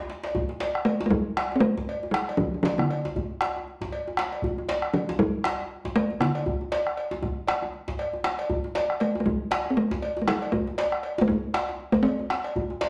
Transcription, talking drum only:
0.85 1.03 A3 medium
1.06 1.12 A3 medium
1.10 1.57 G3 medium
1.56 1.62 C4 medium
1.60 2.13 A3 loud
2.11 2.37 G3 medium
2.37 2.62 F3 medium
2.63 2.70 F3 medium
2.78 3.26 D3 medium
4.94 5.05 F3 medium
5.19 5.97 G3 medium
5.96 6.22 A3 loud
6.20 8.24 D3 medium
9.01 9.20 A3 medium
9.20 9.27 A3 medium
9.26 9.72 G3 medium
9.70 9.78 C4 medium
9.77 10.22 A3 medium
10.22 10.29 A3 medium
10.28 10.51 G3 medium
10.52 11.21 A3 medium
11.21 11.29 A3 medium
11.28 11.94 G3 medium
11.92 12.04 A3 medium
12.03 12.43 C4 medium

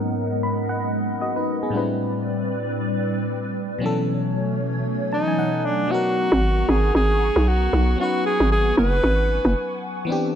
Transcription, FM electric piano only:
0.00 1.68 G#2 medium
0.00 1.68 F#3 medium
0.00 1.75 A#3 medium
0.00 1.21 B3 medium
0.00 1.18 C#4 medium
0.00 1.19 D#4 medium
0.00 1.20 A#4 medium
0.43 0.67 B5 medium
0.69 1.18 F#5 medium
1.21 1.36 F#4 medium
1.21 1.70 D#5 medium
1.36 1.61 D#4 medium
1.36 1.61 B4 medium
1.63 1.72 B3 medium
1.63 1.87 G#4 medium
1.70 3.76 A2 medium
1.70 3.77 G3 medium
1.70 1.80 B3 medium
1.74 3.78 D4 medium
1.74 3.79 E4 medium
1.74 3.80 B4 medium
1.79 3.81 C4 medium
3.79 5.85 B2 medium
3.79 5.86 F#3 medium
3.79 5.86 C#4 medium
3.83 5.88 E3 medium
3.83 5.87 B3 medium
3.83 5.88 A4 medium
5.13 5.27 A5 medium
5.28 5.38 G#5 medium
5.39 5.87 F#5 medium
5.88 7.94 F#3 medium
5.88 7.95 B3 medium
5.88 7.95 C#4 medium
5.93 7.96 D#4 medium
5.93 7.97 A#4 medium
7.96 10.02 F#3 medium
7.96 10.03 B3 medium
7.96 10.04 C#4 medium
8.01 10.05 D#4 medium
8.01 10.06 B4 medium
10.05 10.35 E3 medium
10.05 10.35 B3 medium
10.05 10.35 C4 medium
10.10 10.35 D4 medium
10.10 10.35 G4 medium

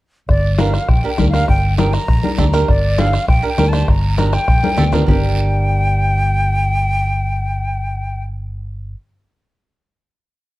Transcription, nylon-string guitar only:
0.58 0.74 D4 medium
0.58 0.75 G4 medium
0.58 0.75 A#4 medium
1.03 1.09 D4 medium
1.03 1.09 G4 soft
1.03 1.09 A#4 medium
1.18 1.24 D4 medium
1.18 1.24 G4 medium
1.18 1.24 A#4 medium
1.33 1.49 D4 medium
1.33 1.49 G4 medium
1.33 1.50 A#4 medium
1.77 1.94 D4 medium
1.77 1.94 G4 medium
1.77 1.94 A#4 medium
2.23 2.28 D4 medium
2.23 2.29 G4 soft
2.23 2.29 A#4 medium
2.38 2.43 D4 medium
2.38 2.44 G4 medium
2.38 2.44 A4 medium
2.53 2.69 D4 medium
2.53 2.69 G4 medium
2.53 2.69 A#4 medium
2.98 3.14 D4 medium
2.98 3.14 G4 medium
2.98 3.14 A4 medium
3.43 3.48 D4 medium
3.43 3.48 G4 medium
3.43 3.49 A#4 medium
3.58 3.63 D4 medium
3.58 3.64 G4 medium
3.58 3.64 A#4 medium
3.72 3.89 D4 medium
3.72 3.89 G4 medium
3.72 3.89 C5 medium
4.17 4.34 D4 medium
4.17 4.34 G4 medium
4.17 4.34 A#4 medium
4.63 4.69 D4 soft
4.63 4.69 G4 medium
4.63 4.69 A#4 medium
4.76 4.83 D4 medium
4.76 4.83 G4 medium
4.76 4.83 A4 medium
4.92 5.05 D4 medium
4.92 5.07 G4 medium
4.92 5.08 A#4 medium
5.07 8.93 D4 medium
5.07 8.94 G4 medium
5.07 8.95 A#4 medium

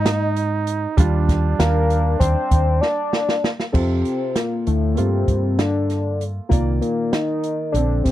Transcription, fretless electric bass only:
0.00 0.85 G#2 loud
0.98 1.53 D#2 loud
1.59 2.14 D#2 medium
2.20 2.34 D#2 medium
2.51 2.79 D#2 medium
3.74 4.02 F2 medium
4.67 4.94 D2 medium
4.98 5.25 G2 medium
5.28 6.39 G2 medium
6.51 6.79 C2 medium
7.74 8.02 A#1 medium
8.06 8.12 A#1 medium

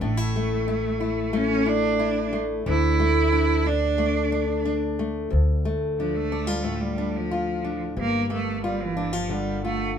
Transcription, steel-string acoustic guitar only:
0.01 2.67 A2 medium
0.01 0.17 D4 medium
0.17 0.67 E4 medium
0.36 1.33 A3 medium
0.68 0.99 E4 medium
1.00 1.65 E4 medium
1.33 2.32 A3 medium
1.66 1.98 E4 medium
1.99 2.62 E4 medium
2.33 2.99 A3 medium
2.66 5.29 D2 medium
2.66 3.31 D4 medium
3.00 3.97 A3 medium
3.32 3.65 D4 medium
3.66 4.31 D4 medium
3.98 4.98 A3 medium
4.32 4.64 D4 medium
4.65 5.28 D4 medium
4.99 5.28 A3 medium
5.30 7.96 D2 medium
5.65 7.94 A3 medium
6.00 6.31 D4 medium
6.32 6.47 D4 medium
6.47 7.30 F4 soft
6.64 7.97 A2 medium
6.98 7.63 D4 medium
7.31 7.94 F4 medium
7.64 7.94 D4 medium
7.97 9.97 G2 medium
8.30 9.98 A#3 medium
8.64 8.96 F4 medium
8.97 9.13 D4 medium
9.13 9.63 F4 medium
9.29 9.98 D3 medium
9.65 9.98 F4 medium

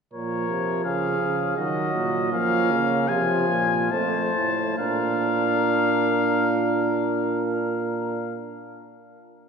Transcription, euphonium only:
0.13 0.47 A#2 medium
0.49 0.84 C3 medium
0.85 1.21 C#3 medium
1.21 1.57 C#3 medium
1.58 1.94 D#3 medium
1.94 2.33 A#2 medium
2.32 2.72 F3 medium
2.71 3.11 C#3 medium
3.10 3.49 C3 medium
3.49 3.93 A#2 medium
3.91 4.34 F2 medium
4.34 4.78 A2 medium
4.79 8.39 A#2 medium

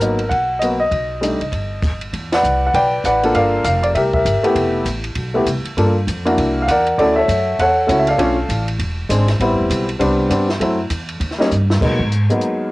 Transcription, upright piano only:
0.00 0.18 F#3 soft
0.00 0.18 A#3 soft
0.00 0.18 B3 soft
0.00 0.18 D#4 medium
0.00 0.31 A#4 medium
0.29 0.58 F#5 medium
0.59 0.78 F#3 soft
0.59 0.79 A#3 soft
0.59 0.64 D#5 medium
0.63 0.79 B3 soft
0.63 0.79 F#4 medium
0.80 1.97 D#5 medium
1.21 1.38 G3 soft
1.21 1.39 A3 soft
1.21 1.39 D4 soft
1.21 1.39 D#4 medium
2.33 2.73 B4 medium
2.33 2.74 D5 medium
2.33 2.65 F#5 medium
2.67 2.73 F#5 medium
2.75 3.05 B4 medium
2.75 3.05 D5 medium
2.75 3.05 G5 loud
3.05 3.33 B4 medium
3.05 3.33 D5 medium
3.05 3.33 F#5 medium
3.23 3.63 A#3 medium
3.23 3.63 D4 medium
3.23 3.63 F4 medium
3.23 3.63 A4 medium
3.35 3.92 A#4 medium
3.35 3.81 D5 medium
3.35 3.63 F5 medium
3.65 3.82 F5 medium
3.83 3.88 D5 medium
3.95 4.14 G4 medium
3.95 4.14 A#4 medium
3.95 4.00 E5 medium
4.14 4.44 G4 medium
4.14 4.54 A#4 soft
4.14 4.42 E5 medium
4.43 4.83 A3 medium
4.43 4.84 B3 medium
4.43 4.84 E4 medium
4.43 4.84 G4 medium
5.34 5.45 A3 medium
5.34 5.45 B3 medium
5.34 5.46 E4 medium
5.34 5.46 G4 medium
5.77 5.93 A#3 medium
5.77 5.94 D4 medium
5.77 5.94 F4 medium
5.77 5.94 A4 medium
6.25 6.65 A#3 medium
6.25 6.65 D4 medium
6.25 6.65 E4 medium
6.25 6.66 F#4 medium
6.62 6.67 F5 medium
6.68 6.97 A#4 medium
6.68 6.97 D5 medium
6.68 6.99 F#5 medium
6.98 7.15 A3 medium
6.98 7.16 C#4 medium
6.98 7.16 E4 medium
6.98 7.55 F#4 medium
6.98 7.16 A4 medium
6.98 7.17 D5 medium
7.16 7.60 A4 medium
7.16 7.60 C#5 medium
7.16 7.59 E5 medium
7.60 8.09 A4 medium
7.60 8.16 C#5 medium
7.60 7.96 F#5 medium
7.87 8.04 A3 medium
7.87 8.05 C#4 medium
7.87 8.05 E4 medium
7.87 8.05 F#4 medium
7.99 8.07 E5 medium
8.09 8.65 A4 medium
8.09 8.65 D5 medium
8.09 8.64 F5 medium
8.18 8.35 A3 medium
8.18 8.35 C#4 medium
8.18 8.35 D4 medium
8.18 8.36 F4 medium
9.09 9.26 G#3 medium
9.09 9.26 C4 medium
9.09 9.26 D4 medium
9.09 9.27 G#4 medium
9.41 9.85 G3 medium
9.41 9.85 B3 medium
9.41 9.85 C4 medium
9.41 9.86 E4 medium
9.99 10.28 G3 medium
9.99 10.28 B3 medium
9.99 10.29 C4 medium
9.99 10.29 D4 medium
10.29 10.46 G3 medium
10.29 10.46 B3 medium
10.29 10.47 C4 medium
10.29 10.47 D4 medium
10.60 10.77 F#3 medium
10.60 10.77 A3 medium
10.60 10.77 C4 medium
10.60 10.77 E4 medium
11.38 11.49 G3 medium
11.38 11.50 A#3 medium
11.38 11.50 C#4 medium
11.38 11.50 D#4 medium
11.81 11.97 F#3 soft
11.81 11.97 G#3 soft
11.81 11.98 A#3 soft
11.81 11.98 B3 soft
11.81 11.98 D#4 medium
12.30 12.69 F#3 soft
12.30 12.69 G#3 soft
12.30 12.69 A#3 soft
12.30 12.70 B3 soft
12.30 12.70 D#4 soft

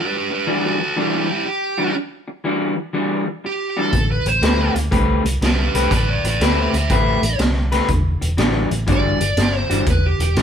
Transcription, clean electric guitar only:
0.30 muted clean electric guitar stroke medium
0.47 0.80 E3 medium
0.47 0.79 G3 medium
0.47 0.79 D4 medium
0.47 0.79 F#4 loud
0.80 muted clean electric guitar stroke soft
0.96 1.29 E3 medium
0.96 1.28 G3 medium
0.96 1.28 D4 medium
0.96 1.27 F#4 medium
1.29 muted clean electric guitar stroke soft
1.45 muted clean electric guitar stroke soft
1.78 1.93 E3 medium
1.78 1.93 G3 medium
1.78 1.94 D4 medium
1.78 1.94 F#4 medium
1.94 muted clean electric guitar stroke soft
2.28 muted clean electric guitar stroke soft
2.44 2.77 E3 medium
2.44 2.76 G3 medium
2.44 2.76 D4 medium
2.44 2.75 F#4 medium
2.76 muted clean electric guitar stroke soft
2.93 3.27 E3 medium
2.93 3.27 G3 medium
2.93 3.27 D4 medium
2.93 3.26 F#4 medium
3.27 muted clean electric guitar stroke soft
3.44 muted clean electric guitar stroke soft
3.77 3.94 E3 medium
3.77 3.93 G3 medium
3.77 3.93 D4 medium
3.77 3.93 F#4 medium
3.93 muted clean electric guitar stroke soft
4.27 muted clean electric guitar stroke soft
4.42 4.75 A3 medium
4.42 4.75 C4 medium
4.42 4.75 G4 medium
4.42 4.74 B4 medium
4.76 muted clean electric guitar stroke soft
4.91 5.25 A3 medium
4.91 5.24 C4 medium
4.91 5.24 G4 medium
4.91 5.24 B4 medium
5.25 muted clean electric guitar stroke soft
5.41 muted clean electric guitar stroke soft
5.75 5.91 A3 medium
5.75 5.92 C4 medium
5.75 5.91 G4 medium
5.75 5.91 B4 medium
5.92 muted clean electric guitar stroke soft
6.25 muted clean electric guitar stroke soft
6.41 6.74 A3 medium
6.41 6.73 C4 medium
6.41 6.73 G4 medium
6.41 6.72 B4 medium
6.74 muted clean electric guitar stroke soft
6.90 7.23 A3 medium
6.90 7.22 C4 medium
6.90 7.22 G4 medium
6.90 7.22 B4 loud
7.23 muted clean electric guitar stroke soft
7.39 muted clean electric guitar stroke soft
7.72 7.88 A3 medium
7.72 7.89 C4 medium
7.72 7.89 G4 medium
7.72 7.89 B4 medium
7.88 muted clean electric guitar stroke soft
8.21 muted clean electric guitar stroke soft
8.37 8.71 E3 medium
8.37 8.70 G3 medium
8.37 8.70 D4 medium
8.37 8.70 F#4 medium
8.71 muted clean electric guitar stroke medium
8.87 9.20 E3 medium
8.87 9.20 G3 medium
8.87 9.20 D4 medium
8.87 9.19 F#4 medium
9.20 muted clean electric guitar stroke soft
9.38 muted clean electric guitar stroke soft
9.70 9.85 E3 medium
9.70 9.86 G3 medium
9.70 9.86 D4 medium
9.70 9.86 F#4 medium
9.86 muted clean electric guitar stroke soft
10.21 muted clean electric guitar stroke soft
10.37 10.42 E3 medium
10.37 10.42 G3 medium
10.37 10.42 D4 medium
10.37 10.42 F#4 medium

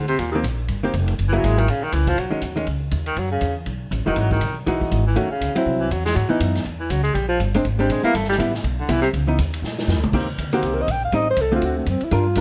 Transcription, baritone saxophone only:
0.08 0.21 C3 loud
0.19 0.31 A#2 medium
0.31 0.38 D#2 medium
1.28 1.39 E3 loud
1.38 1.46 F#3 medium
1.45 1.60 G#3 medium
1.59 1.71 D#3 medium
1.70 1.84 C#3 medium
1.83 1.95 D#3 medium
1.93 2.10 E3 medium
2.08 2.20 F3 loud
2.19 2.58 F#3 medium
3.07 3.21 D#3 medium
3.19 3.31 F#3 medium
3.31 3.55 C#3 medium
4.06 4.20 D#3 medium
4.18 4.31 F#3 medium
4.32 4.54 D#3 medium
5.07 5.19 E3 medium
5.17 5.30 F#3 medium
5.31 5.54 C#3 medium
5.80 5.93 E3 medium
5.91 6.05 F#3 medium
6.05 6.17 G#3 loud
6.15 6.30 F#3 medium
6.29 6.40 E3 medium
6.80 6.92 E3 medium
6.90 7.02 F#3 medium
7.03 7.16 G#3 loud
7.14 7.28 G3 medium
7.29 7.39 F3 loud
7.79 7.93 G3 medium
7.91 8.03 G#3 medium
8.04 8.17 A#3 loud
8.15 8.29 A3 medium
8.29 8.35 G3 loud
8.80 8.92 D3 medium
8.91 9.01 E3 loud
9.02 9.08 C3 loud

